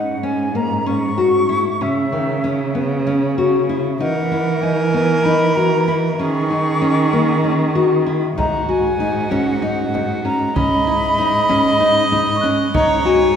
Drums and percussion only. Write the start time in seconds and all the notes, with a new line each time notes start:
8.39 frame drum
9.00 frame drum
9.32 frame drum
9.95 frame drum
10.56 frame drum
11.18 frame drum
11.49 frame drum
12.13 frame drum
12.74 frame drum